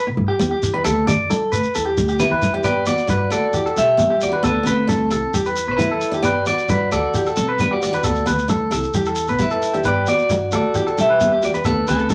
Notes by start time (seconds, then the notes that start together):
0.07 B2
0.17 G2, muted conga, high conga
0.28 G4
0.39 E2 B3, high conga, shekere
0.51 G4
0.63 E2, muted conga, shekere
0.74 D4 B4
0.84 D2 A3 A4, muted conga, shekere
1.07 F#2 A3 D5, low conga, shekere
1.30 A4, high conga, shekere
1.52 D2 B4, shekere
1.63 shekere
1.75 E2 A4, muted conga, shekere
1.86 G4
1.97 D2, muted conga, high conga, shekere
2.08 G4, shekere
2.19 E3 B3 E4 B4, low conga, shekere
2.31 E3 B4
2.42 F#2, muted conga, high conga, shekere
2.54 D4 G4
2.64 G2 B3 G4 B4 D5, muted conga, shekere
2.86 B3 F#4 D5, shekere
2.98 shekere
3.07 G2 D4 B4, high conga, shekere
3.30 D2 A3 F#4 A4 D5, shekere
3.53 E2 G4, muted conga, shekere
3.66 A4, shekere
3.76 B2 G4 E5, muted conga, high conga, shekere
3.97 G3 B3, high conga, shekere
4.10 G4
4.21 E2 F#4 D5, muted conga, shekere
4.32 D4 B4
4.43 D2 B3 D4 A4 B4, muted conga, shekere
4.63 D2 B3 C4 A4 B4, low conga, shekere
4.87 D4 A4, high conga, shekere
5.10 C2 A3 A4, shekere
5.34 E2 G4, muted conga, high conga, shekere
5.45 B4, shekere
5.56 muted conga, shekere
5.67 B1 B4
5.71 C5
5.77 E2 B3 E4 B4, high conga, shekere
5.91 A4
6.01 muted conga, shekere
6.11 D4 G4, shekere
6.22 G2 B3 G4 B4 D5, muted conga, shekere
6.46 B3 F#4 D5, shekere
6.58 shekere
6.68 G2 D4 B4, high conga, shekere
6.91 D2 A3 F#4 A4 D5, shekere
7.14 E2 G4, muted conga, shekere
7.26 A4, shekere
7.36 B2 C4 A4, muted conga, high conga, shekere
7.49 B4
7.59 G3 B3 D4 B4, high conga, shekere
7.71 F#4 G4 D5
7.82 E2 F#4 D5, muted conga, shekere
7.93 D4 B4, shekere
8.03 D2 B3 A4, muted conga, shekere
8.15 shekere
8.26 D2 B3 B4, low conga, shekere
8.38 shekere
8.48 D4 A4, high conga, shekere
8.71 C2 A3 A4, shekere
8.83 shekere
8.94 E2 G4, muted conga, high conga, shekere
9.05 A4, shekere
9.15 shekere
9.27 B1 B4, shekere
9.39 F#2 B3 E4 B4, high conga, shekere
9.50 A4, shekere
9.62 muted conga, shekere
9.73 D4 G4, shekere
9.84 G2 B3 G4 B4 D5, muted conga, shekere
10.06 B3 F#4 D5, shekere
10.18 shekere
10.29 G2 D4, high conga, shekere
10.52 D2 A3 F#4 A4 D5, shekere
10.74 E2 G4, muted conga, shekere
10.87 A4, shekere
10.97 B2 G4 E5, muted conga, high conga, shekere
11.10 B4
11.20 G3 B3, high conga, shekere
11.32 G4
11.42 E2 F#4 D5, muted conga, shekere
11.54 D4 B4, shekere
11.64 D2 B3 D4 A4 B4, muted conga, shekere
11.87 D2 B3 C4 A4 B4, low conga, shekere
11.99 shekere
12.09 D4 A4, high conga, shekere